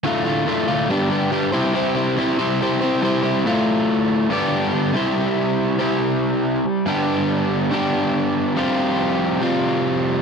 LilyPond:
\new Staff \with { instrumentName = "Overdriven electric guitar" } { \time 4/4 \key d \minor \tempo 4 = 141 <d, a, d a f'>8 <d a f'>8 <a, d a f'>8 <d, a, d a f'>8 <g, d g b d' g'>8 <g b d' g'>8 <g, d g b d' g'>8 <c g c' e' g' c''>8 | <c g c' e' g' c''>8 <c' e' g' c''>8 <c' e' g' c''>8 <c g c' e' g' c''>8 <c' e' g' c''>8 <c' e' g' c''>8 <c g c' e' g' c''>8 <c' e' g' c''>8 | <d, a, d a f'>2 <g, d g b d' g'>4. <c g c' e' g' c''>8~ | <c g c' e' g' c''>4. <c g c' e' g' c''>2 r8 |
<g, d g b d' g'>2 <g, d g b d' g'>2 | <f, c f g c' f'>2 <f, c f g c' f'>2 | }